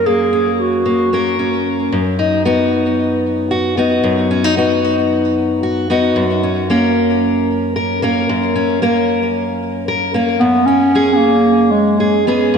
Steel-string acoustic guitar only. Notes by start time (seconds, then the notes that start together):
Already playing: F#2 C#4 A#4
0.06 A#3
0.33 C#4
0.86 A#3
1.13 A#3 C#4 A#4
1.39 C#4
1.92 F#2
2.19 D#4
2.45 B3 D#4 F#4
3.51 F#4
3.77 B3 D#4 F#4
4.03 F#2
4.31 C#4
4.44 D#4
4.57 B3 D#4 F#4
5.63 F#4
5.90 B3 D#4 F#4
6.16 F#2
6.43 C#4
6.70 A#3 C#4 A#4
7.76 A#4
8.02 A#3 C#4 A#4
8.29 F#2
8.55 C#4
8.82 A#3 C#4 A#4
9.88 A#4
10.14 A#3 C#4 A#4
10.41 F#2
10.68 C#4
10.95 C#4 G#4
12.00 G#4
12.27 B3 C#4 G#4
12.54 F#2